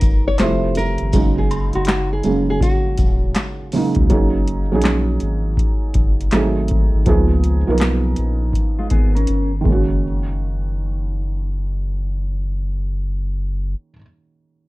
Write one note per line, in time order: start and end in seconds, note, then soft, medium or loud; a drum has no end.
0.00 0.37 F#1 medium
0.00 0.41 C#3 medium
0.00 0.41 F#3 medium
0.00 0.42 G#3 medium
0.00 0.41 A#3 medium
0.00 0.41 D#4 loud
0.00 0.27 A#4 medium
0.00 kick loud
0.00 closed hi-hat medium
0.00 maracas medium
0.28 0.40 C#5 loud
0.38 0.98 F1 loud
0.38 1.06 C3 medium
0.38 1.07 F3 medium
0.38 1.07 G3 medium
0.38 0.77 C5 loud
0.38 snare loud
0.38 clap medium
0.38 closed hi-hat medium
0.38 maracas medium
0.42 1.07 A3 medium
0.42 1.08 E4 medium
0.75 1.34 A#4 loud
0.75 closed hi-hat medium
0.75 maracas medium
0.98 1.13 G1 loud
0.98 closed hi-hat soft
1.13 1.72 F#1 loud
1.13 2.13 C#3 medium
1.13 2.13 F#3 medium
1.13 2.14 G#3 medium
1.13 2.14 A#3 medium
1.13 2.14 D#4 loud
1.13 kick medium
1.13 closed hi-hat medium
1.13 maracas medium
1.38 1.73 G#4 medium
1.51 closed hi-hat medium
1.51 high woodblock medium
1.51 maracas soft
1.73 2.22 F#1 loud
1.73 1.87 F#4 medium
1.73 closed hi-hat soft
1.73 high woodblock medium
1.85 2.12 F#4 medium
1.85 snare loud
1.85 clap medium
1.85 closed hi-hat medium
1.85 maracas medium
2.13 2.49 G#4 medium
2.23 2.60 F1 medium
2.23 3.55 C#3 medium
2.23 3.55 F#3 medium
2.23 3.55 G#3 medium
2.23 3.56 A#3 medium
2.23 3.56 C#4 medium
2.23 closed hi-hat medium
2.23 maracas soft
2.50 2.62 G#4 medium
2.61 3.69 F#4 medium
2.61 kick medium
2.61 closed hi-hat medium
2.61 maracas medium
2.98 3.34 D#1 medium
2.98 kick medium
2.98 closed hi-hat medium
2.98 maracas medium
3.35 snare loud
3.35 clap medium
3.35 closed hi-hat medium
3.35 maracas medium
3.72 4.06 C#3 loud
3.72 4.07 F#3 medium
3.72 4.07 G#3 medium
3.72 4.07 A#3 medium
3.72 open hi-hat medium
3.72 maracas medium
3.76 4.08 D#4 medium
3.95 4.09 C#2 loud
3.95 kick medium
3.95 closed hi-hat soft
4.10 4.74 F#1 medium
4.10 4.60 F#3 loud
4.10 4.60 A#3 medium
4.10 4.61 C#4 medium
4.10 4.61 D#4 medium
4.10 4.62 G#4 medium
4.10 kick medium
4.10 closed hi-hat medium
4.48 closed hi-hat medium
4.72 5.19 A#1 loud
4.72 5.93 F#3 loud
4.72 5.93 A#3 medium
4.72 5.93 C#4 medium
4.72 5.94 D#4 medium
4.72 5.94 G#4 loud
4.82 snare loud
4.82 clap medium
4.82 closed hi-hat medium
5.20 5.57 G#1 medium
5.20 closed hi-hat soft
5.57 kick medium
5.57 closed hi-hat medium
5.94 6.30 F#1 medium
5.94 kick medium
5.94 closed hi-hat medium
6.21 closed hi-hat medium
6.31 6.90 G#1 loud
6.31 6.99 F#3 medium
6.31 6.99 A3 medium
6.31 6.99 C4 medium
6.31 7.00 D#4 medium
6.31 snare loud
6.31 clap medium
6.31 closed hi-hat medium
6.35 7.00 G#4 loud
6.68 kick medium
6.68 closed hi-hat medium
6.94 7.06 G#1 medium
7.06 7.64 C#2 loud
7.06 7.56 F3 loud
7.06 7.57 A#3 medium
7.06 7.57 B3 medium
7.06 7.57 D#4 medium
7.06 7.58 G#4 loud
7.06 kick loud
7.06 closed hi-hat medium
7.44 closed hi-hat medium
7.67 8.15 B1 medium
7.67 8.88 F3 medium
7.67 8.89 A#3 medium
7.67 8.89 B3 medium
7.67 8.89 D#4 medium
7.67 8.90 A#4 loud
7.78 snare loud
7.78 clap medium
7.78 closed hi-hat medium
8.16 8.53 A#1 medium
8.16 closed hi-hat soft
8.53 kick medium
8.53 closed hi-hat medium
8.79 8.91 G#3 medium
8.79 8.91 F4 medium
8.90 9.26 G#1 medium
8.90 9.15 B3 medium
8.90 9.14 G#4 medium
8.90 kick medium
8.90 closed hi-hat medium
9.15 9.51 C#4 medium
9.15 9.51 A#4 medium
9.15 closed hi-hat medium
9.27 9.64 G1 loud
9.27 closed hi-hat medium
9.61 13.88 D#3 medium
9.61 13.91 G#3 medium
9.65 13.75 F#1 medium
9.65 13.94 A#3 medium
9.65 13.97 C#4 medium
9.65 kick medium
9.72 14.00 F#4 medium